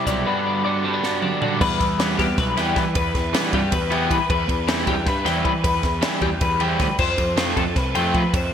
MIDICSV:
0, 0, Header, 1, 6, 480
1, 0, Start_track
1, 0, Tempo, 384862
1, 327, Time_signature, 7, 3, 24, 8
1, 10646, End_track
2, 0, Start_track
2, 0, Title_t, "Clean electric guitar"
2, 0, Program_c, 0, 27
2, 89, Note_on_c, 0, 74, 71
2, 326, Note_off_c, 0, 74, 0
2, 331, Note_on_c, 0, 71, 78
2, 798, Note_off_c, 0, 71, 0
2, 803, Note_on_c, 0, 74, 80
2, 1057, Note_off_c, 0, 74, 0
2, 1057, Note_on_c, 0, 71, 70
2, 1521, Note_off_c, 0, 71, 0
2, 1526, Note_on_c, 0, 74, 70
2, 1756, Note_off_c, 0, 74, 0
2, 1771, Note_on_c, 0, 74, 65
2, 2008, Note_off_c, 0, 74, 0
2, 2013, Note_on_c, 0, 71, 97
2, 2490, Note_off_c, 0, 71, 0
2, 2731, Note_on_c, 0, 67, 88
2, 2969, Note_off_c, 0, 67, 0
2, 2969, Note_on_c, 0, 71, 83
2, 3207, Note_off_c, 0, 71, 0
2, 3224, Note_on_c, 0, 79, 80
2, 3454, Note_off_c, 0, 79, 0
2, 3456, Note_on_c, 0, 71, 80
2, 3678, Note_off_c, 0, 71, 0
2, 3693, Note_on_c, 0, 71, 93
2, 4168, Note_off_c, 0, 71, 0
2, 4415, Note_on_c, 0, 67, 80
2, 4649, Note_off_c, 0, 67, 0
2, 4651, Note_on_c, 0, 71, 83
2, 4887, Note_off_c, 0, 71, 0
2, 4892, Note_on_c, 0, 79, 76
2, 5127, Note_off_c, 0, 79, 0
2, 5128, Note_on_c, 0, 71, 79
2, 5351, Note_off_c, 0, 71, 0
2, 5366, Note_on_c, 0, 71, 101
2, 5844, Note_off_c, 0, 71, 0
2, 6083, Note_on_c, 0, 67, 80
2, 6321, Note_off_c, 0, 67, 0
2, 6321, Note_on_c, 0, 71, 82
2, 6557, Note_on_c, 0, 79, 80
2, 6561, Note_off_c, 0, 71, 0
2, 6794, Note_on_c, 0, 71, 81
2, 6799, Note_off_c, 0, 79, 0
2, 7017, Note_off_c, 0, 71, 0
2, 7032, Note_on_c, 0, 71, 94
2, 7517, Note_off_c, 0, 71, 0
2, 7760, Note_on_c, 0, 67, 80
2, 8001, Note_off_c, 0, 67, 0
2, 8003, Note_on_c, 0, 71, 80
2, 8241, Note_on_c, 0, 79, 76
2, 8242, Note_off_c, 0, 71, 0
2, 8482, Note_off_c, 0, 79, 0
2, 8483, Note_on_c, 0, 71, 75
2, 8712, Note_off_c, 0, 71, 0
2, 8717, Note_on_c, 0, 72, 96
2, 9200, Note_off_c, 0, 72, 0
2, 9435, Note_on_c, 0, 69, 78
2, 9679, Note_off_c, 0, 69, 0
2, 9679, Note_on_c, 0, 71, 85
2, 9917, Note_on_c, 0, 79, 84
2, 9922, Note_off_c, 0, 71, 0
2, 10158, Note_on_c, 0, 71, 75
2, 10161, Note_off_c, 0, 79, 0
2, 10401, Note_off_c, 0, 71, 0
2, 10401, Note_on_c, 0, 72, 93
2, 10646, Note_off_c, 0, 72, 0
2, 10646, End_track
3, 0, Start_track
3, 0, Title_t, "Clean electric guitar"
3, 0, Program_c, 1, 27
3, 0, Note_on_c, 1, 48, 69
3, 0, Note_on_c, 1, 55, 58
3, 0, Note_on_c, 1, 64, 55
3, 0, Note_on_c, 1, 69, 57
3, 95, Note_on_c, 1, 67, 57
3, 294, Note_off_c, 1, 48, 0
3, 296, Note_off_c, 1, 69, 0
3, 300, Note_off_c, 1, 64, 0
3, 324, Note_on_c, 1, 43, 71
3, 332, Note_off_c, 1, 67, 0
3, 337, Note_on_c, 1, 66, 58
3, 374, Note_off_c, 1, 55, 0
3, 582, Note_on_c, 1, 74, 56
3, 806, Note_off_c, 1, 66, 0
3, 821, Note_on_c, 1, 66, 52
3, 1051, Note_on_c, 1, 55, 58
3, 1057, Note_on_c, 1, 60, 55
3, 1172, Note_off_c, 1, 60, 0
3, 1172, Note_on_c, 1, 62, 43
3, 1284, Note_off_c, 1, 66, 0
3, 1299, Note_on_c, 1, 66, 56
3, 1525, Note_off_c, 1, 62, 0
3, 1531, Note_on_c, 1, 50, 62
3, 1540, Note_on_c, 1, 62, 52
3, 1769, Note_off_c, 1, 66, 0
3, 1784, Note_on_c, 1, 66, 55
3, 1985, Note_off_c, 1, 62, 0
3, 1986, Note_off_c, 1, 74, 0
3, 1987, Note_off_c, 1, 66, 0
3, 2006, Note_off_c, 1, 43, 0
3, 2009, Note_off_c, 1, 50, 0
3, 3687, Note_off_c, 1, 55, 0
3, 10646, End_track
4, 0, Start_track
4, 0, Title_t, "Overdriven electric guitar"
4, 0, Program_c, 2, 29
4, 77, Note_on_c, 2, 48, 72
4, 91, Note_on_c, 2, 55, 63
4, 102, Note_on_c, 2, 60, 71
4, 110, Note_on_c, 2, 64, 81
4, 308, Note_off_c, 2, 48, 0
4, 320, Note_off_c, 2, 60, 0
4, 323, Note_on_c, 2, 43, 84
4, 324, Note_off_c, 2, 64, 0
4, 332, Note_on_c, 2, 50, 87
4, 337, Note_off_c, 2, 55, 0
4, 342, Note_on_c, 2, 55, 86
4, 352, Note_on_c, 2, 59, 95
4, 355, Note_on_c, 2, 62, 92
4, 779, Note_off_c, 2, 50, 0
4, 792, Note_off_c, 2, 55, 0
4, 794, Note_on_c, 2, 50, 78
4, 803, Note_off_c, 2, 59, 0
4, 807, Note_on_c, 2, 55, 72
4, 817, Note_off_c, 2, 62, 0
4, 818, Note_on_c, 2, 59, 74
4, 832, Note_on_c, 2, 62, 77
4, 1021, Note_off_c, 2, 62, 0
4, 1036, Note_on_c, 2, 62, 71
4, 1041, Note_off_c, 2, 59, 0
4, 1046, Note_off_c, 2, 43, 0
4, 1056, Note_on_c, 2, 59, 60
4, 1060, Note_off_c, 2, 55, 0
4, 1075, Note_on_c, 2, 55, 57
4, 1281, Note_off_c, 2, 50, 0
4, 1283, Note_on_c, 2, 43, 73
4, 1288, Note_off_c, 2, 55, 0
4, 1294, Note_on_c, 2, 50, 83
4, 1297, Note_off_c, 2, 59, 0
4, 1303, Note_on_c, 2, 55, 87
4, 1306, Note_off_c, 2, 62, 0
4, 1312, Note_on_c, 2, 59, 78
4, 1321, Note_on_c, 2, 62, 87
4, 1744, Note_off_c, 2, 50, 0
4, 1759, Note_on_c, 2, 50, 63
4, 1760, Note_off_c, 2, 55, 0
4, 1770, Note_off_c, 2, 59, 0
4, 1775, Note_on_c, 2, 55, 71
4, 1780, Note_off_c, 2, 62, 0
4, 1785, Note_on_c, 2, 59, 74
4, 1794, Note_on_c, 2, 62, 71
4, 1989, Note_off_c, 2, 50, 0
4, 1991, Note_off_c, 2, 43, 0
4, 1997, Note_off_c, 2, 55, 0
4, 2002, Note_off_c, 2, 59, 0
4, 2007, Note_off_c, 2, 62, 0
4, 2494, Note_on_c, 2, 52, 82
4, 2499, Note_on_c, 2, 55, 91
4, 2504, Note_on_c, 2, 59, 102
4, 2511, Note_on_c, 2, 64, 110
4, 2802, Note_off_c, 2, 52, 0
4, 2805, Note_off_c, 2, 55, 0
4, 2807, Note_off_c, 2, 59, 0
4, 2811, Note_off_c, 2, 64, 0
4, 3209, Note_on_c, 2, 64, 101
4, 3218, Note_on_c, 2, 59, 94
4, 3219, Note_on_c, 2, 55, 74
4, 3223, Note_on_c, 2, 52, 82
4, 3519, Note_off_c, 2, 64, 0
4, 3523, Note_off_c, 2, 59, 0
4, 3524, Note_off_c, 2, 55, 0
4, 3526, Note_off_c, 2, 52, 0
4, 4163, Note_on_c, 2, 52, 86
4, 4167, Note_on_c, 2, 55, 101
4, 4174, Note_on_c, 2, 59, 91
4, 4179, Note_on_c, 2, 64, 95
4, 4475, Note_off_c, 2, 52, 0
4, 4477, Note_off_c, 2, 55, 0
4, 4480, Note_off_c, 2, 59, 0
4, 4483, Note_off_c, 2, 64, 0
4, 4873, Note_on_c, 2, 64, 93
4, 4881, Note_on_c, 2, 55, 83
4, 4883, Note_on_c, 2, 59, 97
4, 4890, Note_on_c, 2, 52, 79
4, 5189, Note_off_c, 2, 64, 0
4, 5193, Note_off_c, 2, 55, 0
4, 5194, Note_off_c, 2, 59, 0
4, 5198, Note_off_c, 2, 52, 0
4, 5834, Note_on_c, 2, 52, 92
4, 5844, Note_on_c, 2, 55, 84
4, 5848, Note_on_c, 2, 60, 96
4, 5850, Note_on_c, 2, 64, 102
4, 6150, Note_off_c, 2, 52, 0
4, 6154, Note_off_c, 2, 55, 0
4, 6156, Note_off_c, 2, 60, 0
4, 6158, Note_off_c, 2, 64, 0
4, 6549, Note_on_c, 2, 64, 89
4, 6553, Note_on_c, 2, 60, 98
4, 6563, Note_on_c, 2, 55, 83
4, 6566, Note_on_c, 2, 52, 78
4, 6867, Note_off_c, 2, 64, 0
4, 6869, Note_off_c, 2, 60, 0
4, 6874, Note_off_c, 2, 55, 0
4, 6875, Note_off_c, 2, 52, 0
4, 7507, Note_on_c, 2, 52, 95
4, 7513, Note_on_c, 2, 55, 86
4, 7518, Note_on_c, 2, 60, 97
4, 7523, Note_on_c, 2, 64, 99
4, 7826, Note_off_c, 2, 52, 0
4, 7829, Note_off_c, 2, 55, 0
4, 7832, Note_off_c, 2, 60, 0
4, 7834, Note_off_c, 2, 64, 0
4, 8235, Note_on_c, 2, 64, 92
4, 8238, Note_on_c, 2, 60, 93
4, 8244, Note_on_c, 2, 55, 81
4, 8247, Note_on_c, 2, 52, 78
4, 8551, Note_off_c, 2, 64, 0
4, 8552, Note_off_c, 2, 60, 0
4, 8555, Note_off_c, 2, 55, 0
4, 8557, Note_off_c, 2, 52, 0
4, 9198, Note_on_c, 2, 53, 90
4, 9200, Note_on_c, 2, 57, 86
4, 9206, Note_on_c, 2, 65, 95
4, 9207, Note_on_c, 2, 60, 87
4, 9513, Note_off_c, 2, 53, 0
4, 9514, Note_off_c, 2, 57, 0
4, 9517, Note_off_c, 2, 65, 0
4, 9518, Note_off_c, 2, 60, 0
4, 9920, Note_on_c, 2, 65, 101
4, 9926, Note_on_c, 2, 60, 92
4, 9933, Note_on_c, 2, 57, 82
4, 9934, Note_on_c, 2, 53, 78
4, 10235, Note_off_c, 2, 65, 0
4, 10238, Note_off_c, 2, 60, 0
4, 10242, Note_off_c, 2, 53, 0
4, 10242, Note_off_c, 2, 57, 0
4, 10646, End_track
5, 0, Start_track
5, 0, Title_t, "Picked electric bass"
5, 0, Program_c, 3, 34
5, 83, Note_on_c, 3, 35, 86
5, 302, Note_off_c, 3, 35, 0
5, 2008, Note_on_c, 3, 40, 105
5, 2225, Note_off_c, 3, 40, 0
5, 2246, Note_on_c, 3, 40, 92
5, 2681, Note_off_c, 3, 40, 0
5, 2725, Note_on_c, 3, 40, 86
5, 2943, Note_off_c, 3, 40, 0
5, 2966, Note_on_c, 3, 35, 102
5, 3183, Note_off_c, 3, 35, 0
5, 3217, Note_on_c, 3, 40, 85
5, 3429, Note_off_c, 3, 40, 0
5, 3441, Note_on_c, 3, 52, 98
5, 3660, Note_off_c, 3, 52, 0
5, 3679, Note_on_c, 3, 40, 96
5, 3899, Note_off_c, 3, 40, 0
5, 3920, Note_on_c, 3, 40, 94
5, 4139, Note_off_c, 3, 40, 0
5, 4400, Note_on_c, 3, 43, 88
5, 4619, Note_off_c, 3, 43, 0
5, 4634, Note_on_c, 3, 40, 108
5, 5072, Note_off_c, 3, 40, 0
5, 5121, Note_on_c, 3, 52, 95
5, 5230, Note_off_c, 3, 52, 0
5, 5356, Note_on_c, 3, 40, 114
5, 5575, Note_off_c, 3, 40, 0
5, 5591, Note_on_c, 3, 40, 95
5, 6030, Note_off_c, 3, 40, 0
5, 6068, Note_on_c, 3, 40, 97
5, 6291, Note_off_c, 3, 40, 0
5, 6311, Note_on_c, 3, 43, 97
5, 6533, Note_off_c, 3, 43, 0
5, 6553, Note_on_c, 3, 40, 90
5, 6774, Note_off_c, 3, 40, 0
5, 6792, Note_on_c, 3, 52, 95
5, 7013, Note_off_c, 3, 52, 0
5, 7032, Note_on_c, 3, 40, 98
5, 7254, Note_off_c, 3, 40, 0
5, 7276, Note_on_c, 3, 40, 94
5, 7496, Note_off_c, 3, 40, 0
5, 7747, Note_on_c, 3, 40, 90
5, 7971, Note_off_c, 3, 40, 0
5, 7991, Note_on_c, 3, 40, 107
5, 8431, Note_off_c, 3, 40, 0
5, 8477, Note_on_c, 3, 38, 90
5, 8588, Note_off_c, 3, 38, 0
5, 8712, Note_on_c, 3, 41, 101
5, 8934, Note_off_c, 3, 41, 0
5, 8951, Note_on_c, 3, 41, 96
5, 9392, Note_off_c, 3, 41, 0
5, 9434, Note_on_c, 3, 41, 93
5, 9656, Note_off_c, 3, 41, 0
5, 9671, Note_on_c, 3, 36, 98
5, 9895, Note_off_c, 3, 36, 0
5, 9909, Note_on_c, 3, 41, 87
5, 10134, Note_off_c, 3, 41, 0
5, 10160, Note_on_c, 3, 53, 94
5, 10380, Note_off_c, 3, 53, 0
5, 10394, Note_on_c, 3, 41, 90
5, 10617, Note_off_c, 3, 41, 0
5, 10646, End_track
6, 0, Start_track
6, 0, Title_t, "Drums"
6, 82, Note_on_c, 9, 36, 77
6, 85, Note_on_c, 9, 42, 66
6, 90, Note_on_c, 9, 38, 34
6, 207, Note_off_c, 9, 36, 0
6, 210, Note_off_c, 9, 42, 0
6, 215, Note_off_c, 9, 38, 0
6, 1291, Note_on_c, 9, 38, 54
6, 1415, Note_off_c, 9, 38, 0
6, 1525, Note_on_c, 9, 47, 67
6, 1650, Note_off_c, 9, 47, 0
6, 1768, Note_on_c, 9, 43, 92
6, 1892, Note_off_c, 9, 43, 0
6, 2009, Note_on_c, 9, 36, 118
6, 2011, Note_on_c, 9, 49, 125
6, 2134, Note_off_c, 9, 36, 0
6, 2136, Note_off_c, 9, 49, 0
6, 2250, Note_on_c, 9, 36, 92
6, 2252, Note_on_c, 9, 51, 86
6, 2257, Note_on_c, 9, 38, 37
6, 2375, Note_off_c, 9, 36, 0
6, 2377, Note_off_c, 9, 51, 0
6, 2382, Note_off_c, 9, 38, 0
6, 2489, Note_on_c, 9, 51, 104
6, 2494, Note_on_c, 9, 38, 124
6, 2614, Note_off_c, 9, 51, 0
6, 2618, Note_off_c, 9, 38, 0
6, 2730, Note_on_c, 9, 36, 78
6, 2733, Note_on_c, 9, 51, 79
6, 2738, Note_on_c, 9, 38, 39
6, 2855, Note_off_c, 9, 36, 0
6, 2858, Note_off_c, 9, 51, 0
6, 2863, Note_off_c, 9, 38, 0
6, 2966, Note_on_c, 9, 51, 99
6, 2968, Note_on_c, 9, 36, 114
6, 2971, Note_on_c, 9, 38, 40
6, 3091, Note_off_c, 9, 51, 0
6, 3093, Note_off_c, 9, 36, 0
6, 3096, Note_off_c, 9, 38, 0
6, 3210, Note_on_c, 9, 51, 78
6, 3215, Note_on_c, 9, 38, 40
6, 3334, Note_off_c, 9, 51, 0
6, 3339, Note_off_c, 9, 38, 0
6, 3442, Note_on_c, 9, 51, 83
6, 3447, Note_on_c, 9, 36, 84
6, 3447, Note_on_c, 9, 38, 37
6, 3567, Note_off_c, 9, 51, 0
6, 3572, Note_off_c, 9, 36, 0
6, 3572, Note_off_c, 9, 38, 0
6, 3681, Note_on_c, 9, 51, 109
6, 3686, Note_on_c, 9, 36, 122
6, 3805, Note_off_c, 9, 51, 0
6, 3811, Note_off_c, 9, 36, 0
6, 3926, Note_on_c, 9, 36, 87
6, 3927, Note_on_c, 9, 51, 93
6, 3932, Note_on_c, 9, 38, 39
6, 4051, Note_off_c, 9, 36, 0
6, 4052, Note_off_c, 9, 51, 0
6, 4057, Note_off_c, 9, 38, 0
6, 4170, Note_on_c, 9, 51, 120
6, 4175, Note_on_c, 9, 38, 120
6, 4294, Note_off_c, 9, 51, 0
6, 4299, Note_off_c, 9, 38, 0
6, 4400, Note_on_c, 9, 51, 92
6, 4404, Note_on_c, 9, 36, 85
6, 4524, Note_off_c, 9, 51, 0
6, 4529, Note_off_c, 9, 36, 0
6, 4640, Note_on_c, 9, 51, 115
6, 4643, Note_on_c, 9, 36, 116
6, 4765, Note_off_c, 9, 51, 0
6, 4767, Note_off_c, 9, 36, 0
6, 4883, Note_on_c, 9, 51, 85
6, 5007, Note_off_c, 9, 51, 0
6, 5122, Note_on_c, 9, 36, 88
6, 5124, Note_on_c, 9, 51, 89
6, 5246, Note_off_c, 9, 36, 0
6, 5249, Note_off_c, 9, 51, 0
6, 5361, Note_on_c, 9, 36, 117
6, 5361, Note_on_c, 9, 51, 115
6, 5486, Note_off_c, 9, 36, 0
6, 5486, Note_off_c, 9, 51, 0
6, 5600, Note_on_c, 9, 36, 83
6, 5601, Note_on_c, 9, 51, 82
6, 5725, Note_off_c, 9, 36, 0
6, 5726, Note_off_c, 9, 51, 0
6, 5840, Note_on_c, 9, 51, 113
6, 5845, Note_on_c, 9, 38, 124
6, 5964, Note_off_c, 9, 51, 0
6, 5969, Note_off_c, 9, 38, 0
6, 6073, Note_on_c, 9, 51, 80
6, 6077, Note_on_c, 9, 36, 84
6, 6198, Note_off_c, 9, 51, 0
6, 6201, Note_off_c, 9, 36, 0
6, 6318, Note_on_c, 9, 36, 123
6, 6318, Note_on_c, 9, 51, 107
6, 6323, Note_on_c, 9, 38, 39
6, 6443, Note_off_c, 9, 36, 0
6, 6443, Note_off_c, 9, 51, 0
6, 6448, Note_off_c, 9, 38, 0
6, 6559, Note_on_c, 9, 51, 77
6, 6564, Note_on_c, 9, 38, 42
6, 6683, Note_off_c, 9, 51, 0
6, 6688, Note_off_c, 9, 38, 0
6, 6797, Note_on_c, 9, 36, 82
6, 6797, Note_on_c, 9, 51, 82
6, 6921, Note_off_c, 9, 51, 0
6, 6922, Note_off_c, 9, 36, 0
6, 7037, Note_on_c, 9, 36, 114
6, 7037, Note_on_c, 9, 51, 107
6, 7162, Note_off_c, 9, 36, 0
6, 7162, Note_off_c, 9, 51, 0
6, 7271, Note_on_c, 9, 51, 84
6, 7276, Note_on_c, 9, 36, 85
6, 7276, Note_on_c, 9, 38, 37
6, 7396, Note_off_c, 9, 51, 0
6, 7400, Note_off_c, 9, 36, 0
6, 7401, Note_off_c, 9, 38, 0
6, 7513, Note_on_c, 9, 51, 105
6, 7518, Note_on_c, 9, 38, 119
6, 7637, Note_off_c, 9, 51, 0
6, 7642, Note_off_c, 9, 38, 0
6, 7750, Note_on_c, 9, 51, 83
6, 7756, Note_on_c, 9, 36, 89
6, 7875, Note_off_c, 9, 51, 0
6, 7880, Note_off_c, 9, 36, 0
6, 7992, Note_on_c, 9, 51, 107
6, 7997, Note_on_c, 9, 36, 118
6, 8117, Note_off_c, 9, 51, 0
6, 8122, Note_off_c, 9, 36, 0
6, 8231, Note_on_c, 9, 51, 90
6, 8356, Note_off_c, 9, 51, 0
6, 8475, Note_on_c, 9, 51, 84
6, 8477, Note_on_c, 9, 36, 83
6, 8480, Note_on_c, 9, 38, 39
6, 8600, Note_off_c, 9, 51, 0
6, 8602, Note_off_c, 9, 36, 0
6, 8605, Note_off_c, 9, 38, 0
6, 8712, Note_on_c, 9, 49, 111
6, 8717, Note_on_c, 9, 36, 120
6, 8837, Note_off_c, 9, 49, 0
6, 8842, Note_off_c, 9, 36, 0
6, 8954, Note_on_c, 9, 51, 89
6, 8957, Note_on_c, 9, 36, 80
6, 9079, Note_off_c, 9, 51, 0
6, 9082, Note_off_c, 9, 36, 0
6, 9196, Note_on_c, 9, 51, 123
6, 9201, Note_on_c, 9, 38, 121
6, 9321, Note_off_c, 9, 51, 0
6, 9326, Note_off_c, 9, 38, 0
6, 9439, Note_on_c, 9, 36, 78
6, 9441, Note_on_c, 9, 51, 78
6, 9564, Note_off_c, 9, 36, 0
6, 9566, Note_off_c, 9, 51, 0
6, 9679, Note_on_c, 9, 36, 111
6, 9681, Note_on_c, 9, 51, 117
6, 9686, Note_on_c, 9, 38, 38
6, 9804, Note_off_c, 9, 36, 0
6, 9805, Note_off_c, 9, 51, 0
6, 9810, Note_off_c, 9, 38, 0
6, 9917, Note_on_c, 9, 51, 88
6, 10042, Note_off_c, 9, 51, 0
6, 10158, Note_on_c, 9, 36, 89
6, 10158, Note_on_c, 9, 51, 82
6, 10283, Note_off_c, 9, 36, 0
6, 10283, Note_off_c, 9, 51, 0
6, 10398, Note_on_c, 9, 36, 119
6, 10398, Note_on_c, 9, 51, 111
6, 10523, Note_off_c, 9, 36, 0
6, 10523, Note_off_c, 9, 51, 0
6, 10646, End_track
0, 0, End_of_file